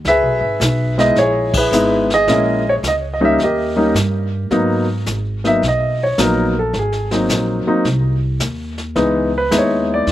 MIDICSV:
0, 0, Header, 1, 5, 480
1, 0, Start_track
1, 0, Key_signature, 5, "minor"
1, 0, Tempo, 557103
1, 46, Time_signature, 4, 2, 24, 8
1, 8719, End_track
2, 0, Start_track
2, 0, Title_t, "Grand piano"
2, 0, Program_c, 0, 0
2, 66, Note_on_c, 0, 76, 105
2, 74, Note_on_c, 0, 71, 79
2, 75, Note_on_c, 0, 68, 73
2, 825, Note_off_c, 0, 76, 0
2, 842, Note_on_c, 0, 56, 71
2, 847, Note_on_c, 0, 59, 59
2, 849, Note_on_c, 0, 63, 59
2, 852, Note_on_c, 0, 64, 77
2, 855, Note_on_c, 0, 75, 98
2, 985, Note_off_c, 0, 71, 0
2, 986, Note_off_c, 0, 68, 0
2, 987, Note_off_c, 0, 56, 0
2, 989, Note_off_c, 0, 59, 0
2, 990, Note_off_c, 0, 63, 0
2, 991, Note_off_c, 0, 64, 0
2, 998, Note_off_c, 0, 75, 0
2, 1021, Note_on_c, 0, 73, 93
2, 1025, Note_on_c, 0, 64, 70
2, 1027, Note_on_c, 0, 68, 67
2, 1340, Note_off_c, 0, 64, 0
2, 1346, Note_off_c, 0, 73, 0
2, 1347, Note_off_c, 0, 68, 0
2, 1353, Note_on_c, 0, 64, 63
2, 1355, Note_on_c, 0, 71, 82
2, 1359, Note_on_c, 0, 68, 60
2, 1481, Note_off_c, 0, 64, 0
2, 1487, Note_on_c, 0, 56, 70
2, 1490, Note_on_c, 0, 63, 62
2, 1492, Note_on_c, 0, 59, 66
2, 1494, Note_on_c, 0, 64, 76
2, 1777, Note_off_c, 0, 56, 0
2, 1779, Note_off_c, 0, 63, 0
2, 1780, Note_off_c, 0, 59, 0
2, 1781, Note_off_c, 0, 64, 0
2, 1789, Note_off_c, 0, 71, 0
2, 1829, Note_off_c, 0, 68, 0
2, 1842, Note_on_c, 0, 68, 65
2, 1843, Note_on_c, 0, 75, 104
2, 1962, Note_on_c, 0, 56, 68
2, 1964, Note_on_c, 0, 58, 60
2, 1967, Note_on_c, 0, 64, 77
2, 1970, Note_on_c, 0, 61, 60
2, 2255, Note_off_c, 0, 56, 0
2, 2256, Note_off_c, 0, 58, 0
2, 2257, Note_off_c, 0, 64, 0
2, 2259, Note_off_c, 0, 61, 0
2, 2319, Note_off_c, 0, 75, 0
2, 2320, Note_on_c, 0, 73, 88
2, 2363, Note_off_c, 0, 73, 0
2, 2478, Note_on_c, 0, 75, 88
2, 2529, Note_off_c, 0, 75, 0
2, 2702, Note_on_c, 0, 75, 70
2, 2751, Note_off_c, 0, 68, 0
2, 2762, Note_on_c, 0, 55, 68
2, 2763, Note_on_c, 0, 58, 65
2, 2768, Note_on_c, 0, 63, 79
2, 2770, Note_on_c, 0, 61, 63
2, 2775, Note_off_c, 0, 75, 0
2, 2800, Note_on_c, 0, 76, 93
2, 2906, Note_off_c, 0, 55, 0
2, 2907, Note_off_c, 0, 58, 0
2, 2909, Note_off_c, 0, 63, 0
2, 2910, Note_off_c, 0, 61, 0
2, 2931, Note_off_c, 0, 76, 0
2, 2958, Note_on_c, 0, 75, 81
2, 2966, Note_on_c, 0, 67, 65
2, 2966, Note_on_c, 0, 70, 59
2, 3238, Note_on_c, 0, 55, 68
2, 3243, Note_on_c, 0, 58, 62
2, 3246, Note_on_c, 0, 61, 60
2, 3249, Note_on_c, 0, 63, 73
2, 3384, Note_off_c, 0, 55, 0
2, 3386, Note_off_c, 0, 58, 0
2, 3388, Note_off_c, 0, 61, 0
2, 3389, Note_off_c, 0, 63, 0
2, 3389, Note_off_c, 0, 75, 0
2, 3870, Note_off_c, 0, 70, 0
2, 3871, Note_off_c, 0, 67, 0
2, 3885, Note_on_c, 0, 54, 68
2, 3888, Note_on_c, 0, 58, 64
2, 3889, Note_on_c, 0, 59, 63
2, 3894, Note_on_c, 0, 63, 75
2, 4176, Note_off_c, 0, 54, 0
2, 4177, Note_off_c, 0, 58, 0
2, 4178, Note_off_c, 0, 59, 0
2, 4180, Note_off_c, 0, 63, 0
2, 4688, Note_on_c, 0, 58, 57
2, 4689, Note_on_c, 0, 54, 56
2, 4693, Note_on_c, 0, 63, 66
2, 4697, Note_on_c, 0, 59, 55
2, 4713, Note_on_c, 0, 76, 89
2, 4828, Note_off_c, 0, 58, 0
2, 4829, Note_off_c, 0, 54, 0
2, 4831, Note_off_c, 0, 63, 0
2, 4833, Note_off_c, 0, 59, 0
2, 4852, Note_off_c, 0, 76, 0
2, 4895, Note_on_c, 0, 75, 78
2, 5184, Note_off_c, 0, 75, 0
2, 5198, Note_on_c, 0, 73, 78
2, 5324, Note_on_c, 0, 54, 70
2, 5328, Note_on_c, 0, 59, 63
2, 5330, Note_on_c, 0, 58, 66
2, 5332, Note_on_c, 0, 63, 73
2, 5335, Note_off_c, 0, 73, 0
2, 5363, Note_on_c, 0, 70, 74
2, 5615, Note_off_c, 0, 54, 0
2, 5617, Note_off_c, 0, 59, 0
2, 5618, Note_off_c, 0, 58, 0
2, 5619, Note_off_c, 0, 63, 0
2, 5658, Note_off_c, 0, 70, 0
2, 5679, Note_on_c, 0, 69, 74
2, 5815, Note_off_c, 0, 69, 0
2, 5850, Note_on_c, 0, 68, 67
2, 6128, Note_on_c, 0, 54, 64
2, 6132, Note_on_c, 0, 60, 57
2, 6133, Note_on_c, 0, 58, 55
2, 6138, Note_on_c, 0, 63, 67
2, 6141, Note_off_c, 0, 68, 0
2, 6575, Note_off_c, 0, 54, 0
2, 6577, Note_off_c, 0, 58, 0
2, 6577, Note_off_c, 0, 60, 0
2, 6580, Note_off_c, 0, 63, 0
2, 6610, Note_on_c, 0, 54, 63
2, 6610, Note_on_c, 0, 58, 61
2, 6612, Note_on_c, 0, 60, 63
2, 6616, Note_on_c, 0, 63, 74
2, 6749, Note_off_c, 0, 54, 0
2, 6749, Note_off_c, 0, 58, 0
2, 6750, Note_off_c, 0, 60, 0
2, 6752, Note_off_c, 0, 63, 0
2, 7716, Note_on_c, 0, 56, 59
2, 7717, Note_on_c, 0, 52, 67
2, 7718, Note_on_c, 0, 59, 62
2, 7722, Note_on_c, 0, 63, 75
2, 8011, Note_off_c, 0, 52, 0
2, 8011, Note_off_c, 0, 56, 0
2, 8011, Note_off_c, 0, 59, 0
2, 8013, Note_off_c, 0, 63, 0
2, 8079, Note_on_c, 0, 71, 87
2, 8193, Note_on_c, 0, 56, 59
2, 8196, Note_on_c, 0, 59, 59
2, 8196, Note_on_c, 0, 64, 68
2, 8198, Note_on_c, 0, 63, 72
2, 8215, Note_off_c, 0, 71, 0
2, 8256, Note_on_c, 0, 73, 74
2, 8544, Note_off_c, 0, 73, 0
2, 8563, Note_on_c, 0, 74, 84
2, 8697, Note_off_c, 0, 74, 0
2, 8719, Note_off_c, 0, 56, 0
2, 8719, Note_off_c, 0, 59, 0
2, 8719, Note_off_c, 0, 63, 0
2, 8719, Note_off_c, 0, 64, 0
2, 8719, End_track
3, 0, Start_track
3, 0, Title_t, "Upright bass"
3, 0, Program_c, 1, 32
3, 40, Note_on_c, 1, 37, 86
3, 193, Note_off_c, 1, 37, 0
3, 193, Note_on_c, 1, 35, 58
3, 342, Note_off_c, 1, 35, 0
3, 348, Note_on_c, 1, 32, 65
3, 505, Note_off_c, 1, 32, 0
3, 516, Note_on_c, 1, 35, 92
3, 986, Note_off_c, 1, 35, 0
3, 996, Note_on_c, 1, 34, 84
3, 1466, Note_off_c, 1, 34, 0
3, 1470, Note_on_c, 1, 32, 88
3, 1943, Note_off_c, 1, 32, 0
3, 1960, Note_on_c, 1, 34, 88
3, 2428, Note_off_c, 1, 34, 0
3, 2439, Note_on_c, 1, 37, 90
3, 2907, Note_off_c, 1, 37, 0
3, 2917, Note_on_c, 1, 39, 85
3, 3386, Note_off_c, 1, 39, 0
3, 3398, Note_on_c, 1, 43, 88
3, 3866, Note_off_c, 1, 43, 0
3, 3882, Note_on_c, 1, 44, 77
3, 4348, Note_off_c, 1, 44, 0
3, 4362, Note_on_c, 1, 32, 86
3, 4829, Note_off_c, 1, 32, 0
3, 4844, Note_on_c, 1, 35, 79
3, 5309, Note_off_c, 1, 35, 0
3, 5324, Note_on_c, 1, 34, 92
3, 5789, Note_off_c, 1, 34, 0
3, 5801, Note_on_c, 1, 32, 76
3, 6268, Note_off_c, 1, 32, 0
3, 6279, Note_on_c, 1, 34, 87
3, 6582, Note_off_c, 1, 34, 0
3, 6761, Note_on_c, 1, 36, 82
3, 7227, Note_off_c, 1, 36, 0
3, 7240, Note_on_c, 1, 39, 88
3, 7707, Note_off_c, 1, 39, 0
3, 7717, Note_on_c, 1, 37, 87
3, 8185, Note_off_c, 1, 37, 0
3, 8197, Note_on_c, 1, 39, 90
3, 8665, Note_off_c, 1, 39, 0
3, 8674, Note_on_c, 1, 40, 86
3, 8719, Note_off_c, 1, 40, 0
3, 8719, End_track
4, 0, Start_track
4, 0, Title_t, "Muted upright bass strokes"
4, 6598, Note_on_c, 9, 29, 38
4, 6684, Note_off_c, 9, 29, 0
4, 8719, End_track
5, 0, Start_track
5, 0, Title_t, "Drums"
5, 44, Note_on_c, 9, 25, 55
5, 44, Note_on_c, 9, 36, 26
5, 44, Note_on_c, 9, 38, 48
5, 130, Note_off_c, 9, 36, 0
5, 130, Note_off_c, 9, 38, 0
5, 522, Note_on_c, 9, 36, 25
5, 522, Note_on_c, 9, 44, 58
5, 525, Note_on_c, 9, 38, 64
5, 608, Note_off_c, 9, 36, 0
5, 608, Note_off_c, 9, 44, 0
5, 611, Note_off_c, 9, 38, 0
5, 849, Note_on_c, 9, 38, 39
5, 935, Note_off_c, 9, 38, 0
5, 1000, Note_on_c, 9, 36, 22
5, 1001, Note_off_c, 9, 25, 0
5, 1001, Note_on_c, 9, 25, 50
5, 1001, Note_on_c, 9, 38, 45
5, 1086, Note_off_c, 9, 36, 0
5, 1087, Note_off_c, 9, 38, 0
5, 1324, Note_on_c, 9, 36, 92
5, 1326, Note_on_c, 9, 49, 78
5, 1411, Note_off_c, 9, 36, 0
5, 1412, Note_off_c, 9, 49, 0
5, 1484, Note_on_c, 9, 44, 67
5, 1570, Note_off_c, 9, 44, 0
5, 1811, Note_on_c, 9, 38, 42
5, 1897, Note_off_c, 9, 38, 0
5, 1960, Note_on_c, 9, 36, 19
5, 1962, Note_off_c, 9, 25, 0
5, 1962, Note_on_c, 9, 25, 47
5, 1962, Note_on_c, 9, 38, 46
5, 2046, Note_off_c, 9, 36, 0
5, 2048, Note_off_c, 9, 38, 0
5, 2441, Note_on_c, 9, 36, 26
5, 2442, Note_on_c, 9, 44, 55
5, 2446, Note_on_c, 9, 38, 61
5, 2527, Note_off_c, 9, 36, 0
5, 2529, Note_off_c, 9, 44, 0
5, 2532, Note_off_c, 9, 38, 0
5, 2922, Note_on_c, 9, 36, 23
5, 2926, Note_off_c, 9, 25, 0
5, 2926, Note_on_c, 9, 25, 50
5, 2926, Note_on_c, 9, 38, 43
5, 3008, Note_off_c, 9, 36, 0
5, 3012, Note_off_c, 9, 38, 0
5, 3404, Note_on_c, 9, 36, 24
5, 3405, Note_on_c, 9, 44, 58
5, 3408, Note_on_c, 9, 38, 69
5, 3490, Note_off_c, 9, 36, 0
5, 3491, Note_off_c, 9, 44, 0
5, 3495, Note_off_c, 9, 38, 0
5, 3884, Note_on_c, 9, 36, 25
5, 3886, Note_off_c, 9, 25, 0
5, 3886, Note_on_c, 9, 25, 44
5, 3886, Note_on_c, 9, 38, 41
5, 3970, Note_off_c, 9, 36, 0
5, 3972, Note_off_c, 9, 38, 0
5, 4362, Note_on_c, 9, 44, 51
5, 4364, Note_on_c, 9, 36, 18
5, 4365, Note_on_c, 9, 38, 55
5, 4448, Note_off_c, 9, 44, 0
5, 4450, Note_off_c, 9, 36, 0
5, 4451, Note_off_c, 9, 38, 0
5, 4692, Note_on_c, 9, 38, 38
5, 4779, Note_off_c, 9, 38, 0
5, 4846, Note_on_c, 9, 36, 23
5, 4851, Note_off_c, 9, 25, 0
5, 4851, Note_on_c, 9, 25, 47
5, 4851, Note_on_c, 9, 38, 40
5, 4932, Note_off_c, 9, 36, 0
5, 4937, Note_off_c, 9, 38, 0
5, 5324, Note_on_c, 9, 44, 58
5, 5325, Note_on_c, 9, 36, 26
5, 5328, Note_on_c, 9, 38, 64
5, 5410, Note_off_c, 9, 44, 0
5, 5412, Note_off_c, 9, 36, 0
5, 5414, Note_off_c, 9, 38, 0
5, 5804, Note_on_c, 9, 36, 25
5, 5805, Note_off_c, 9, 25, 0
5, 5805, Note_on_c, 9, 25, 45
5, 5805, Note_on_c, 9, 38, 43
5, 5891, Note_off_c, 9, 36, 0
5, 5891, Note_off_c, 9, 38, 0
5, 5965, Note_on_c, 9, 38, 29
5, 6051, Note_off_c, 9, 38, 0
5, 6127, Note_on_c, 9, 38, 44
5, 6213, Note_off_c, 9, 38, 0
5, 6283, Note_on_c, 9, 44, 57
5, 6284, Note_on_c, 9, 36, 23
5, 6286, Note_on_c, 9, 38, 56
5, 6369, Note_off_c, 9, 44, 0
5, 6370, Note_off_c, 9, 36, 0
5, 6372, Note_off_c, 9, 38, 0
5, 6762, Note_off_c, 9, 25, 0
5, 6762, Note_on_c, 9, 25, 46
5, 6762, Note_on_c, 9, 38, 40
5, 6763, Note_on_c, 9, 36, 21
5, 6848, Note_off_c, 9, 38, 0
5, 6850, Note_off_c, 9, 36, 0
5, 7236, Note_on_c, 9, 44, 61
5, 7240, Note_on_c, 9, 38, 65
5, 7241, Note_on_c, 9, 36, 21
5, 7322, Note_off_c, 9, 44, 0
5, 7326, Note_off_c, 9, 38, 0
5, 7327, Note_off_c, 9, 36, 0
5, 7562, Note_on_c, 9, 38, 36
5, 7649, Note_off_c, 9, 38, 0
5, 7720, Note_off_c, 9, 25, 0
5, 7720, Note_on_c, 9, 25, 50
5, 7720, Note_on_c, 9, 38, 46
5, 7721, Note_on_c, 9, 36, 22
5, 7806, Note_off_c, 9, 38, 0
5, 7807, Note_off_c, 9, 36, 0
5, 8196, Note_on_c, 9, 44, 55
5, 8199, Note_on_c, 9, 36, 19
5, 8200, Note_on_c, 9, 38, 59
5, 8282, Note_off_c, 9, 44, 0
5, 8285, Note_off_c, 9, 36, 0
5, 8286, Note_off_c, 9, 38, 0
5, 8676, Note_off_c, 9, 25, 0
5, 8676, Note_on_c, 9, 25, 53
5, 8676, Note_on_c, 9, 38, 43
5, 8678, Note_on_c, 9, 36, 25
5, 8719, Note_off_c, 9, 25, 0
5, 8719, Note_off_c, 9, 36, 0
5, 8719, Note_off_c, 9, 38, 0
5, 8719, End_track
0, 0, End_of_file